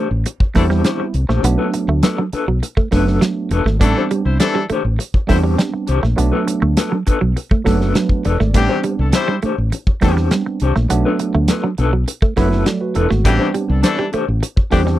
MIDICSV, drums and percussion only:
0, 0, Header, 1, 2, 480
1, 0, Start_track
1, 0, Tempo, 590551
1, 1170, Time_signature, 4, 2, 24, 8
1, 12184, End_track
2, 0, Start_track
2, 0, Title_t, "Drums"
2, 208, Note_on_c, 9, 42, 89
2, 290, Note_off_c, 9, 42, 0
2, 328, Note_on_c, 9, 36, 93
2, 409, Note_off_c, 9, 36, 0
2, 446, Note_on_c, 9, 46, 54
2, 450, Note_on_c, 9, 38, 33
2, 454, Note_on_c, 9, 36, 85
2, 527, Note_off_c, 9, 46, 0
2, 531, Note_off_c, 9, 38, 0
2, 535, Note_off_c, 9, 36, 0
2, 570, Note_on_c, 9, 38, 36
2, 651, Note_off_c, 9, 38, 0
2, 686, Note_on_c, 9, 42, 91
2, 688, Note_on_c, 9, 38, 98
2, 767, Note_off_c, 9, 42, 0
2, 770, Note_off_c, 9, 38, 0
2, 926, Note_on_c, 9, 42, 70
2, 1007, Note_off_c, 9, 42, 0
2, 1051, Note_on_c, 9, 38, 35
2, 1132, Note_off_c, 9, 38, 0
2, 1170, Note_on_c, 9, 42, 107
2, 1252, Note_off_c, 9, 42, 0
2, 1410, Note_on_c, 9, 42, 82
2, 1491, Note_off_c, 9, 42, 0
2, 1648, Note_on_c, 9, 42, 97
2, 1653, Note_on_c, 9, 38, 112
2, 1729, Note_off_c, 9, 42, 0
2, 1734, Note_off_c, 9, 38, 0
2, 1891, Note_on_c, 9, 42, 62
2, 1972, Note_off_c, 9, 42, 0
2, 2137, Note_on_c, 9, 42, 79
2, 2218, Note_off_c, 9, 42, 0
2, 2253, Note_on_c, 9, 36, 81
2, 2334, Note_off_c, 9, 36, 0
2, 2371, Note_on_c, 9, 46, 62
2, 2375, Note_on_c, 9, 38, 34
2, 2379, Note_on_c, 9, 36, 85
2, 2452, Note_off_c, 9, 46, 0
2, 2456, Note_off_c, 9, 38, 0
2, 2460, Note_off_c, 9, 36, 0
2, 2497, Note_on_c, 9, 38, 40
2, 2578, Note_off_c, 9, 38, 0
2, 2614, Note_on_c, 9, 42, 80
2, 2617, Note_on_c, 9, 38, 102
2, 2696, Note_off_c, 9, 42, 0
2, 2698, Note_off_c, 9, 38, 0
2, 2851, Note_on_c, 9, 42, 81
2, 2932, Note_off_c, 9, 42, 0
2, 2978, Note_on_c, 9, 38, 37
2, 3059, Note_off_c, 9, 38, 0
2, 3095, Note_on_c, 9, 36, 113
2, 3098, Note_on_c, 9, 42, 99
2, 3177, Note_off_c, 9, 36, 0
2, 3180, Note_off_c, 9, 42, 0
2, 3339, Note_on_c, 9, 42, 80
2, 3420, Note_off_c, 9, 42, 0
2, 3575, Note_on_c, 9, 42, 103
2, 3579, Note_on_c, 9, 38, 120
2, 3656, Note_off_c, 9, 42, 0
2, 3661, Note_off_c, 9, 38, 0
2, 3816, Note_on_c, 9, 42, 59
2, 3897, Note_off_c, 9, 42, 0
2, 4063, Note_on_c, 9, 42, 78
2, 4144, Note_off_c, 9, 42, 0
2, 4178, Note_on_c, 9, 36, 83
2, 4260, Note_off_c, 9, 36, 0
2, 4299, Note_on_c, 9, 46, 59
2, 4303, Note_on_c, 9, 38, 33
2, 4305, Note_on_c, 9, 36, 83
2, 4380, Note_off_c, 9, 46, 0
2, 4384, Note_off_c, 9, 38, 0
2, 4386, Note_off_c, 9, 36, 0
2, 4541, Note_on_c, 9, 42, 90
2, 4544, Note_on_c, 9, 38, 105
2, 4623, Note_off_c, 9, 42, 0
2, 4625, Note_off_c, 9, 38, 0
2, 4775, Note_on_c, 9, 42, 83
2, 4856, Note_off_c, 9, 42, 0
2, 4905, Note_on_c, 9, 38, 34
2, 4986, Note_off_c, 9, 38, 0
2, 5024, Note_on_c, 9, 42, 99
2, 5105, Note_off_c, 9, 42, 0
2, 5265, Note_on_c, 9, 42, 91
2, 5346, Note_off_c, 9, 42, 0
2, 5501, Note_on_c, 9, 42, 106
2, 5506, Note_on_c, 9, 38, 109
2, 5582, Note_off_c, 9, 42, 0
2, 5587, Note_off_c, 9, 38, 0
2, 5743, Note_on_c, 9, 42, 64
2, 5750, Note_on_c, 9, 36, 79
2, 5825, Note_off_c, 9, 42, 0
2, 5832, Note_off_c, 9, 36, 0
2, 5989, Note_on_c, 9, 42, 84
2, 6070, Note_off_c, 9, 42, 0
2, 6105, Note_on_c, 9, 36, 94
2, 6186, Note_off_c, 9, 36, 0
2, 6226, Note_on_c, 9, 46, 57
2, 6230, Note_on_c, 9, 38, 30
2, 6232, Note_on_c, 9, 36, 85
2, 6308, Note_off_c, 9, 46, 0
2, 6312, Note_off_c, 9, 38, 0
2, 6313, Note_off_c, 9, 36, 0
2, 6348, Note_on_c, 9, 38, 41
2, 6430, Note_off_c, 9, 38, 0
2, 6463, Note_on_c, 9, 42, 89
2, 6465, Note_on_c, 9, 38, 101
2, 6544, Note_off_c, 9, 42, 0
2, 6546, Note_off_c, 9, 38, 0
2, 6579, Note_on_c, 9, 36, 83
2, 6660, Note_off_c, 9, 36, 0
2, 6703, Note_on_c, 9, 42, 80
2, 6784, Note_off_c, 9, 42, 0
2, 6826, Note_on_c, 9, 38, 34
2, 6907, Note_off_c, 9, 38, 0
2, 6944, Note_on_c, 9, 42, 97
2, 6945, Note_on_c, 9, 36, 115
2, 7025, Note_off_c, 9, 42, 0
2, 7026, Note_off_c, 9, 36, 0
2, 7181, Note_on_c, 9, 42, 86
2, 7262, Note_off_c, 9, 42, 0
2, 7417, Note_on_c, 9, 42, 103
2, 7422, Note_on_c, 9, 38, 110
2, 7498, Note_off_c, 9, 42, 0
2, 7503, Note_off_c, 9, 38, 0
2, 7659, Note_on_c, 9, 42, 59
2, 7741, Note_off_c, 9, 42, 0
2, 7903, Note_on_c, 9, 42, 79
2, 7984, Note_off_c, 9, 42, 0
2, 8021, Note_on_c, 9, 36, 92
2, 8103, Note_off_c, 9, 36, 0
2, 8139, Note_on_c, 9, 46, 55
2, 8143, Note_on_c, 9, 38, 36
2, 8148, Note_on_c, 9, 36, 84
2, 8220, Note_off_c, 9, 46, 0
2, 8224, Note_off_c, 9, 38, 0
2, 8229, Note_off_c, 9, 36, 0
2, 8263, Note_on_c, 9, 38, 38
2, 8345, Note_off_c, 9, 38, 0
2, 8379, Note_on_c, 9, 42, 91
2, 8382, Note_on_c, 9, 38, 108
2, 8461, Note_off_c, 9, 42, 0
2, 8463, Note_off_c, 9, 38, 0
2, 8614, Note_on_c, 9, 42, 75
2, 8696, Note_off_c, 9, 42, 0
2, 8742, Note_on_c, 9, 38, 34
2, 8824, Note_off_c, 9, 38, 0
2, 8859, Note_on_c, 9, 42, 101
2, 8940, Note_off_c, 9, 42, 0
2, 9097, Note_on_c, 9, 42, 85
2, 9179, Note_off_c, 9, 42, 0
2, 9329, Note_on_c, 9, 42, 102
2, 9334, Note_on_c, 9, 38, 110
2, 9411, Note_off_c, 9, 42, 0
2, 9416, Note_off_c, 9, 38, 0
2, 9573, Note_on_c, 9, 42, 55
2, 9654, Note_off_c, 9, 42, 0
2, 9816, Note_on_c, 9, 42, 91
2, 9897, Note_off_c, 9, 42, 0
2, 9934, Note_on_c, 9, 36, 97
2, 10015, Note_off_c, 9, 36, 0
2, 10051, Note_on_c, 9, 46, 51
2, 10055, Note_on_c, 9, 38, 31
2, 10059, Note_on_c, 9, 36, 88
2, 10132, Note_off_c, 9, 46, 0
2, 10136, Note_off_c, 9, 38, 0
2, 10141, Note_off_c, 9, 36, 0
2, 10175, Note_on_c, 9, 38, 34
2, 10256, Note_off_c, 9, 38, 0
2, 10291, Note_on_c, 9, 42, 84
2, 10293, Note_on_c, 9, 38, 104
2, 10372, Note_off_c, 9, 42, 0
2, 10374, Note_off_c, 9, 38, 0
2, 10525, Note_on_c, 9, 42, 81
2, 10607, Note_off_c, 9, 42, 0
2, 10654, Note_on_c, 9, 38, 38
2, 10735, Note_off_c, 9, 38, 0
2, 10770, Note_on_c, 9, 36, 113
2, 10771, Note_on_c, 9, 42, 101
2, 10851, Note_off_c, 9, 36, 0
2, 10852, Note_off_c, 9, 42, 0
2, 11010, Note_on_c, 9, 42, 81
2, 11091, Note_off_c, 9, 42, 0
2, 11244, Note_on_c, 9, 42, 99
2, 11249, Note_on_c, 9, 38, 117
2, 11325, Note_off_c, 9, 42, 0
2, 11330, Note_off_c, 9, 38, 0
2, 11483, Note_on_c, 9, 42, 64
2, 11565, Note_off_c, 9, 42, 0
2, 11727, Note_on_c, 9, 42, 86
2, 11809, Note_off_c, 9, 42, 0
2, 11844, Note_on_c, 9, 36, 96
2, 11925, Note_off_c, 9, 36, 0
2, 11959, Note_on_c, 9, 46, 54
2, 11963, Note_on_c, 9, 38, 37
2, 11969, Note_on_c, 9, 36, 80
2, 12040, Note_off_c, 9, 46, 0
2, 12044, Note_off_c, 9, 38, 0
2, 12050, Note_off_c, 9, 36, 0
2, 12084, Note_on_c, 9, 38, 34
2, 12165, Note_off_c, 9, 38, 0
2, 12184, End_track
0, 0, End_of_file